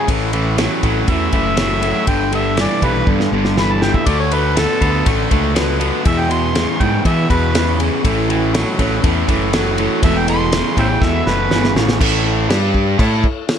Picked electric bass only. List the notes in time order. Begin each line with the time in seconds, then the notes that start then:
0.09 A1
0.83 A1
1.08 E2
1.33 F#1
2.07 G1
2.83 B1
3.07 G2
3.32 G1
4.07 D2
4.81 D2
5.06 A1
5.31 C#2
6.06 E2
6.81 G#2
7.05 E3
7.30 E2
8.05 A1
8.79 A1
9.04 E2
9.29 F#1
10.03 E1
10.77 A1
11.01 E2
11.27 F#1
11.51 G1
11.76 A1
12.01 A1
12.49 G2
12.99 A2